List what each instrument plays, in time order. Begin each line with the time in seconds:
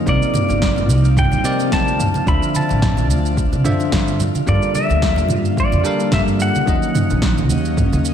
Already playing: synth texture F3 F5, analog synth pad A#3
0.05 upright bass C2, tine electric piano C3 C4 D#4 A#4 D5, analog synth pad G3 C4 D#4, pedal steel guitar D5, kick, shaker
0.22 shaker
0.34 mid tom, high conga, shaker
0.49 upright bass G1, high bongo, shaker
0.62 kick, snare, shaker
0.76 low conga, shaker
0.89 upright bass C2, high conga, shaker
1.05 shaker
1.17 pedal steel guitar G5, kick, mid tom, shaker
1.32 upright bass A#1, high conga, shaker
1.44 tine electric piano C3 C4 D#4 A#4 D5, shaker
1.59 high bongo, shaker
1.72 upright bass D2, pedal steel guitar A5, kick, snare, high conga, shaker
1.88 shaker
1.99 analog synth pad D3 F3 D5, mid tom, shaker
2.14 high conga, shaker
2.26 upright bass D2, tine electric piano D3 D4 F4 C5 E5, pedal steel guitar B5, kick, shaker
2.43 shaker
2.55 pedal steel guitar A5, high conga, shaker
2.69 upright bass A1, high bongo, shaker
2.82 kick, snare, mid tom, shaker
2.97 low conga, shaker
3.09 upright bass D2, high conga, shaker
3.26 shaker
3.37 kick, shaker
3.52 upright bass C2, high conga, shaker
3.64 tine electric piano D3 D4 F4 C5 E5, mid tom, shaker
3.80 high bongo, shaker
3.92 upright bass G2, kick, snare, high conga, shaker
4.08 shaker
4.19 analog synth pad G3 A#3 F4, low conga, shaker
4.35 high conga, shaker
4.46 upright bass G2, tine electric piano G3 D4 F4 A4 A#4, pedal steel guitar D5, kick, mid tom, shaker
4.62 shaker
4.75 pedal steel guitar E5, high conga, shaker
4.90 upright bass D2, high bongo, shaker
5.02 kick, snare, shaker
5.16 low conga, shaker
5.29 upright bass G2, mid tom, high conga, shaker
5.45 shaker
5.57 pedal steel guitar D5, kick, shaker
5.72 upright bass F2, high conga, shaker
5.84 tine electric piano G3 D4 A4 A#4 F5, shaker
6.00 high bongo, shaker
6.12 upright bass G2, pedal steel guitar E5, kick, snare, mid tom, high conga, shaker
6.28 shaker
6.40 pedal steel guitar F#5, shaker
6.55 high conga, shaker
6.66 upright bass D#2, analog synth pad C#3 D#3 C#4 D#5, tine electric piano D#3 F#3 C#4 D#4 D#5, kick, shaker
6.83 shaker
6.95 mid tom, high conga, shaker
7.10 upright bass A#1, high bongo, shaker
7.22 kick, snare, shaker
7.38 low conga, shaker
7.50 upright bass D#2, high conga, shaker
7.65 shaker
7.77 kick, mid tom, shaker
7.93 upright bass D#2, high conga, shaker
8.05 shaker